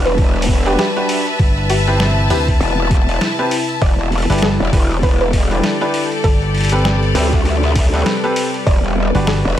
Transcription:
0.00 0.77 E1 loud
0.00 1.37 G3 medium
0.00 1.37 D4 medium
0.00 3.78 B4 medium
0.00 4.80 B4 medium
0.00 4.80 E5 medium
0.05 0.14 B4 medium
0.05 4.60 A5 loud
0.05 snare soft
0.05 open hi-hat soft
0.18 kick loud
0.18 open hi-hat soft
0.36 open hi-hat soft
0.42 open hi-hat medium
0.48 kick medium
0.66 0.91 D4 medium
0.66 0.91 F#4 medium
0.66 0.91 G4 medium
0.66 0.74 G4 medium
0.66 0.91 B4 medium
0.66 open hi-hat soft
0.79 0.90 G4 medium
0.79 snare loud
0.79 open hi-hat soft
0.96 1.23 D4 medium
0.96 1.23 F#4 medium
0.96 1.23 G4 medium
0.96 1.23 B4 loud
0.96 open hi-hat soft
1.09 open hi-hat medium
1.27 open hi-hat soft
1.39 2.28 G1 loud
1.39 3.79 C3 medium
1.39 6.20 E4 medium
1.39 kick loud
1.39 open hi-hat soft
1.57 open hi-hat soft
1.70 1.97 G4 medium
1.70 open hi-hat medium
1.87 2.27 C4 medium
1.87 2.27 E4 medium
1.87 2.27 G4 medium
1.87 2.27 B4 medium
1.87 open hi-hat soft
2.00 snare loud
2.00 open hi-hat soft
2.18 open hi-hat soft
2.30 2.58 D2 loud
2.30 2.49 C4 medium
2.30 2.49 E4 medium
2.30 2.49 G4 medium
2.30 2.79 G4 loud
2.30 2.49 B4 medium
2.30 open hi-hat medium
2.48 kick medium
2.48 open hi-hat soft
2.60 3.19 E1 medium
2.60 open hi-hat soft
2.79 open hi-hat soft
2.87 open hi-hat soft
2.91 kick loud
2.91 open hi-hat medium
2.97 open hi-hat soft
3.09 open hi-hat soft
3.21 snare loud
3.21 open hi-hat soft
3.39 3.53 C4 medium
3.39 3.53 E4 medium
3.39 3.53 G4 medium
3.39 3.53 B4 medium
3.39 open hi-hat soft
3.51 open hi-hat medium
3.69 open hi-hat soft
3.82 4.27 E1 loud
3.82 6.22 D3 medium
3.82 6.22 G3 medium
3.82 9.47 A4 medium
3.82 4.09 D5 medium
3.82 kick loud
3.82 open hi-hat soft
3.99 open hi-hat soft
4.12 open hi-hat soft
4.18 open hi-hat soft
4.22 open hi-hat soft
4.30 4.57 G1 loud
4.30 4.70 D4 medium
4.30 4.70 E4 medium
4.30 4.70 G4 medium
4.30 4.70 B4 medium
4.30 open hi-hat medium
4.32 open hi-hat medium
4.38 open hi-hat medium
4.42 4.70 A4 loud
4.42 snare loud
4.42 open hi-hat soft
4.60 4.71 E1 loud
4.60 9.59 D5 medium
4.60 open hi-hat soft
4.72 5.62 E1 loud
4.72 4.92 D4 medium
4.72 4.92 E4 medium
4.72 4.92 G4 medium
4.72 4.92 B4 medium
4.72 kick loud
4.72 open hi-hat medium
4.91 9.59 G4 medium
4.91 snare soft
4.91 open hi-hat soft
5.03 5.15 B4 medium
5.03 kick loud
5.03 open hi-hat soft
5.21 5.29 B4 medium
5.21 open hi-hat soft
5.33 kick medium
5.33 open hi-hat medium
5.51 5.76 D4 medium
5.51 5.76 E4 medium
5.51 5.76 G4 medium
5.51 5.76 B4 medium
5.51 open hi-hat soft
5.64 snare loud
5.64 open hi-hat soft
5.81 6.07 D4 medium
5.81 6.07 E4 medium
5.81 6.07 G4 medium
5.81 6.07 B4 loud
5.81 open hi-hat soft
5.94 open hi-hat medium
6.12 open hi-hat soft
6.24 7.13 G1 loud
6.24 8.64 C3 medium
6.24 9.59 G3 medium
6.24 6.52 A4 medium
6.24 9.59 B4 medium
6.24 kick loud
6.24 open hi-hat soft
6.42 open hi-hat soft
6.55 open hi-hat soft
6.58 open hi-hat soft
6.61 open hi-hat soft
6.64 open hi-hat medium
6.69 7.12 C4 medium
6.69 7.12 G4 medium
6.69 7.12 A4 medium
6.69 7.12 B4 medium
6.69 open hi-hat medium
6.72 open hi-hat soft
6.79 open hi-hat soft
6.82 7.33 G4 medium
6.82 snare loud
6.82 open hi-hat soft
6.85 open hi-hat soft
6.89 open hi-hat soft
6.94 open hi-hat soft
6.98 open hi-hat soft
7.03 open hi-hat soft
7.15 8.04 D2 loud
7.15 7.34 C4 medium
7.15 7.34 G4 medium
7.15 7.34 A4 medium
7.15 7.34 B4 medium
7.15 open hi-hat medium
7.33 kick medium
7.33 open hi-hat soft
7.45 open hi-hat soft
7.63 open hi-hat soft
7.76 kick loud
7.76 open hi-hat medium
7.93 8.18 C4 medium
7.93 8.18 G4 medium
7.93 8.18 A4 medium
7.93 8.18 B4 medium
7.93 open hi-hat soft
8.06 snare loud
8.06 open hi-hat soft
8.24 8.50 C4 medium
8.24 8.50 G4 medium
8.24 8.50 A4 medium
8.24 8.50 B4 loud
8.24 open hi-hat soft
8.36 open hi-hat medium
8.54 open hi-hat soft
8.66 9.12 E1 medium
8.66 9.59 D3 medium
8.66 9.59 B4 medium
8.66 8.94 D5 medium
8.66 kick loud
8.66 open hi-hat soft
8.84 open hi-hat soft
9.15 9.42 G1 loud
9.15 9.55 D4 medium
9.15 9.55 F#4 medium
9.15 9.55 G4 medium
9.15 9.55 B4 medium
9.15 open hi-hat soft
9.27 9.55 A4 medium
9.27 snare loud
9.27 open hi-hat soft
9.45 9.56 E1 loud
9.45 9.59 E5 medium
9.45 open hi-hat soft

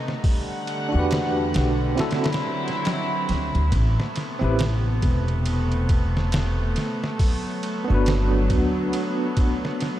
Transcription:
0.00 0.20 C3 medium
0.00 0.20 A3 medium
0.00 0.20 B3 medium
0.00 0.20 D#4 medium
0.08 snare soft
0.24 3.68 D3 medium
0.24 1.96 G3 medium
0.24 1.96 A3 medium
0.24 1.96 F#5 medium
0.24 kick loud
0.24 open hi-hat medium
0.67 ride medium
0.89 1.94 D4 medium
0.89 1.95 F#4 medium
0.94 1.51 E2 medium
0.94 1.97 G4 medium
0.99 1.98 B4 loud
1.11 snare loud
1.11 ride medium
1.54 1.94 B1 medium
1.54 snare loud
1.54 ride medium
1.96 3.70 F#3 medium
1.96 2.25 C4 medium
1.96 3.70 C4 medium
1.96 2.26 E4 medium
1.96 3.70 E4 loud
1.96 2.27 F#4 medium
1.96 snare medium
1.96 ride medium
2.01 2.28 A4 loud
2.11 snare medium
2.11 ride medium
2.24 snare medium
2.24 ride medium
2.33 snare medium
2.33 ride medium
2.68 snare soft
2.68 ride medium
2.85 snare loud
2.85 ride medium
3.29 3.52 D2 medium
3.29 snare soft
3.29 ride medium
3.55 3.70 D2 medium
3.55 ride soft
3.71 3.95 A1 loud
3.71 7.16 C3 medium
3.71 10.00 A3 medium
3.71 7.16 B3 medium
3.71 kick loud
3.71 ride medium
4.00 snare medium
4.16 snare soft
4.16 ride medium
4.39 4.99 A1 medium
4.39 4.62 C4 loud
4.39 4.62 E4 medium
4.39 4.63 G4 medium
4.44 4.64 B4 loud
4.59 snare loud
4.59 ride medium
5.02 6.73 E1 medium
5.02 kick medium
5.02 ride medium
5.28 ride soft
5.46 ride medium
5.72 ride soft
5.89 kick medium
5.89 ride medium
6.17 snare medium
6.32 snare loud
6.32 ride medium
6.76 snare soft
6.76 ride medium
7.04 snare soft
7.19 10.00 F#3 medium
7.19 10.00 B3 medium
7.19 kick loud
7.19 open hi-hat medium
7.63 ride medium
7.84 10.00 B3 medium
7.84 10.00 D4 medium
7.90 8.47 G1 medium
7.90 10.00 F#4 medium
7.90 10.00 B4 loud
8.06 snare loud
8.06 ride medium
8.50 8.89 D2 medium
8.50 kick loud
8.50 ride medium
8.93 ride medium
9.37 kick loud
9.37 ride medium
9.65 snare soft
9.80 snare soft
9.80 ride medium

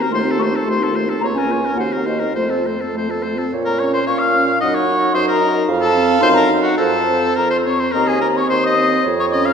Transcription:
0.00 0.11 C4 medium
0.00 0.11 F#4 soft
0.00 0.14 A#4 soft
0.00 0.11 A#5 medium
0.11 0.60 D#2 medium
0.11 0.25 A3 medium
0.11 0.26 F4 medium
0.11 0.32 C5 medium
0.11 0.18 C6 medium
0.24 0.40 C4 soft
0.24 0.41 D#4 soft
0.31 0.44 A4 soft
0.38 0.53 A3 soft
0.38 0.54 F4 medium
0.38 0.45 C#6 medium
0.43 0.58 C5 soft
0.51 0.64 C4 soft
0.51 0.67 D#4 soft
0.56 0.68 A4 soft
0.65 1.15 D#2 medium
0.65 0.81 A3 medium
0.65 0.83 F4 soft
0.65 0.93 C6 medium
0.70 0.85 C5 soft
0.80 0.95 C4 soft
0.80 0.96 D#4 soft
0.80 0.97 A4 soft
0.93 1.08 A3 soft
0.93 1.10 F4 soft
0.93 1.11 C5 soft
1.07 1.21 C4 soft
1.07 1.21 D#4 soft
1.07 1.23 A4 soft
1.20 1.71 C#2 medium
1.20 1.35 A#3 soft
1.20 1.38 F4 soft
1.20 1.26 A#5 medium
1.24 1.40 C#5 soft
1.34 1.50 C#4 soft
1.34 1.52 C#4 soft
1.34 1.76 G#5 medium
1.38 1.53 A#4 soft
1.49 1.64 A#3 soft
1.49 1.64 F4 soft
1.49 1.67 C#5 soft
1.62 1.75 C#4 soft
1.62 1.76 C#4 soft
1.62 1.79 A#4 soft
1.75 2.28 D#2 medium
1.75 1.91 A#3 soft
1.75 1.93 F#4 soft
1.75 1.83 F#5 medium
1.79 1.94 C5 soft
1.90 2.08 C4 soft
1.90 2.08 D#4 soft
1.90 2.08 A#4 soft
2.05 2.23 A#3 soft
2.05 2.23 F#4 soft
2.05 2.21 C5 soft
2.05 2.34 D#5 medium
2.20 2.35 C4 soft
2.20 2.36 D#4 soft
2.20 2.35 A#4 soft
2.35 2.79 F2 soft
2.35 2.50 A3 soft
2.35 2.53 F4 soft
2.35 2.52 C5 soft
2.35 2.94 C5 medium
2.49 2.65 C4 soft
2.49 2.68 A4 soft
2.64 2.80 A3 soft
2.64 2.83 F4 soft
2.64 2.83 C5 soft
2.78 2.92 C4 soft
2.78 2.95 A4 soft
2.93 3.46 F2 soft
2.93 3.11 A3 soft
2.93 3.11 F4 soft
2.93 3.12 C5 soft
3.09 3.24 C4 soft
3.09 3.27 A4 soft
3.09 3.24 A4 soft
3.22 3.39 A3 soft
3.22 3.41 F4 soft
3.22 3.40 C5 soft
3.37 3.52 C4 soft
3.37 3.52 A4 soft
3.37 3.53 A4 soft
3.53 4.01 A#2 medium
3.53 4.09 C#5 medium
3.65 3.81 A#4 medium
3.65 3.73 A#5 medium
3.79 4.33 C#4 soft
3.79 3.93 C#5 medium
3.79 3.85 C#6 medium
3.93 4.06 C5 medium
3.93 4.00 C6 medium
4.06 4.55 A#2 medium
4.06 4.20 C#5 medium
4.06 4.63 F5 medium
4.06 4.23 C#6 medium
4.19 4.60 F5 medium
4.19 4.61 F6 medium
4.36 4.62 C#4 soft
4.60 5.09 F#2 medium
4.60 4.88 D#4 medium
4.60 4.76 D#5 medium
4.60 5.16 F#5 medium
4.60 4.67 D#6 medium
4.74 5.14 C#5 medium
4.74 5.14 C#6 medium
4.89 5.40 D#4 medium
5.13 5.62 F#2 medium
5.13 5.27 C5 medium
5.13 5.52 D#5 medium
5.13 5.26 C6 medium
5.27 5.67 A#4 medium
5.27 5.67 A#5 medium
5.42 5.68 D#4 medium
5.68 6.16 F2 medium
5.68 6.77 F5 loud
5.80 6.19 A4 medium
5.80 6.22 A5 loud
5.95 6.21 C4 medium
6.21 6.72 F#2 medium
6.21 6.49 D#4 medium
6.21 6.29 C5 loud
6.21 6.36 C6 loud
6.34 6.49 A#4 medium
6.34 6.63 A#5 loud
6.49 6.78 D#4 medium
6.62 6.77 F#4 medium
6.62 6.79 F#5 medium
6.77 7.31 F2 medium
6.77 7.38 A4 medium
6.77 7.65 C5 medium
6.77 7.36 A5 loud
7.09 7.66 C4 medium
7.36 7.88 F2 medium
7.36 7.50 A#4 medium
7.36 7.51 A#5 medium
7.50 7.57 C5 medium
7.50 7.58 C6 medium
7.66 7.94 C4 soft
7.66 7.81 C#5 medium
7.66 7.81 C#6 medium
7.80 7.94 C5 medium
7.80 7.94 C6 medium
7.92 8.44 D#2 medium
7.92 8.22 C4 medium
7.92 8.08 A#4 medium
7.92 8.47 D#5 medium
7.92 8.10 A#5 medium
8.07 8.20 G#4 medium
8.07 8.23 G#5 medium
8.21 8.77 C4 medium
8.21 8.28 A#4 medium
8.21 8.38 A#5 medium
8.37 8.49 C#5 medium
8.37 8.51 C#6 medium
8.49 8.99 D#2 medium
8.49 9.06 C5 medium
8.49 8.64 C5 medium
8.49 8.65 C6 medium
8.64 9.05 D#5 medium
8.64 9.05 D#6 medium
8.78 9.05 C4 medium
9.04 9.53 F2 medium
9.04 9.53 C#5 medium
9.19 9.26 C#5 medium
9.19 9.34 C#6 medium
9.32 9.53 C#4 medium
9.32 9.47 D#5 medium
9.32 9.46 D#6 loud
9.45 9.53 F5 medium
9.45 9.52 F6 medium

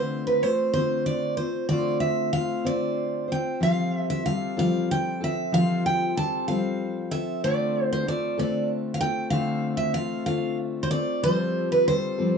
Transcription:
0.00 0.44 D3 medium
0.00 0.43 A3 medium
0.00 0.44 C4 medium
0.00 0.44 F4 medium
0.00 0.25 C5 medium
0.00 0.45 C5 medium
0.27 0.43 B4 medium
0.43 0.76 A3 medium
0.43 0.75 C4 medium
0.43 0.74 F4 medium
0.43 0.72 C5 medium
0.43 0.73 C5 medium
0.74 1.40 D3 soft
0.74 1.70 A3 soft
0.74 1.41 C4 medium
0.74 1.39 F4 medium
0.74 1.06 C5 medium
0.74 1.37 C5 medium
1.06 1.37 D5 medium
1.37 1.70 F4 soft
1.37 1.68 C5 medium
1.37 1.70 C5 soft
1.41 1.69 C4 soft
1.69 2.34 D3 medium
1.69 2.33 A3 medium
1.69 2.34 C4 medium
1.69 2.35 F4 medium
1.69 2.36 C5 medium
1.69 2.00 D5 medium
2.00 2.32 E5 medium
2.33 2.65 A3 medium
2.33 2.64 C4 medium
2.33 2.64 F4 medium
2.33 2.63 C5 medium
2.33 2.66 F5 medium
2.64 3.30 D3 medium
2.64 3.60 A3 soft
2.64 3.30 C4 medium
2.64 3.29 F4 medium
2.64 3.27 C5 medium
2.64 3.26 D5 medium
3.28 3.60 C4 soft
3.28 3.60 F4 soft
3.28 3.61 C5 soft
3.32 3.62 G5 medium
3.60 4.28 F3 medium
3.60 4.24 G3 medium
3.60 4.25 C4 medium
3.60 4.27 F4 medium
3.60 4.27 A4 medium
3.60 3.96 F5 medium
3.96 4.07 E5 medium
4.10 4.25 E5 medium
4.25 4.57 G3 soft
4.25 4.56 C4 medium
4.25 4.56 F4 medium
4.25 4.55 A4 medium
4.25 4.58 F5 medium
4.57 5.52 F3 medium
4.57 5.21 G3 medium
4.57 5.22 C4 medium
4.57 5.22 F4 medium
4.57 5.20 A4 medium
4.57 4.91 F5 medium
4.91 5.23 G5 medium
5.20 5.52 C4 soft
5.20 5.52 F4 soft
5.20 5.52 A4 soft
5.20 5.54 E5 medium
5.52 6.18 F3 medium
5.52 6.14 G3 medium
5.52 6.16 C4 medium
5.52 6.16 F4 medium
5.52 6.17 A4 medium
5.52 5.83 F5 medium
5.86 6.17 G5 medium
6.15 6.47 G3 soft
6.15 6.48 C4 medium
6.15 6.47 F4 medium
6.15 6.47 A4 medium
6.15 6.47 A5 medium
6.48 7.43 F3 soft
6.48 7.12 G3 medium
6.48 7.14 C4 medium
6.48 7.13 F4 medium
6.48 7.11 A4 medium
6.48 7.11 F5 medium
7.11 7.43 C4 soft
7.11 7.44 F4 soft
7.11 7.43 A4 soft
7.11 7.41 E5 medium
7.44 8.07 D3 medium
7.44 8.06 A3 medium
7.44 8.07 C4 medium
7.44 8.07 F4 medium
7.44 8.08 A4 medium
7.44 7.92 D5 medium
7.93 8.07 C5 medium
8.06 8.38 A3 soft
8.06 8.37 C4 medium
8.06 8.37 F4 medium
8.06 8.36 A4 medium
8.06 8.38 D5 medium
8.38 9.02 D3 soft
8.38 9.32 A3 medium
8.38 9.03 C4 medium
8.38 9.02 F4 medium
8.38 9.01 A4 medium
8.38 8.68 D5 medium
8.94 9.00 F5 medium
9.01 9.32 C4 soft
9.01 9.33 F4 soft
9.01 9.33 A4 soft
9.01 9.30 G5 medium
9.30 9.96 D3 medium
9.30 9.95 A3 medium
9.30 9.96 C4 medium
9.30 9.97 F4 medium
9.30 9.97 A4 medium
9.30 9.76 F5 medium
9.77 9.94 E5 medium
9.94 10.27 A3 soft
9.94 10.26 C4 medium
9.94 10.26 F4 medium
9.94 10.25 A4 medium
9.94 10.25 F5 medium
10.26 10.92 D3 soft
10.26 11.24 A3 medium
10.26 10.93 C4 medium
10.26 10.92 F4 medium
10.26 10.91 A4 medium
10.26 10.57 F5 medium
10.83 10.90 C5 medium
10.91 11.23 C4 soft
10.91 11.24 F4 soft
10.91 11.24 A4 soft
10.91 11.23 D5 medium
11.23 11.90 F3 medium
11.23 11.86 G3 medium
11.23 11.88 C4 medium
11.23 11.89 F4 medium
11.23 11.89 A4 medium
11.23 11.68 C5 medium
11.72 11.87 B4 medium
11.87 12.18 G3 soft
11.87 12.18 C4 medium
11.87 12.17 F4 medium
11.87 12.17 A4 medium
11.87 12.38 C5 medium
12.18 12.38 F3 medium
12.18 12.38 G3 medium
12.18 12.38 C4 medium
12.18 12.38 F4 medium
12.18 12.38 A4 medium

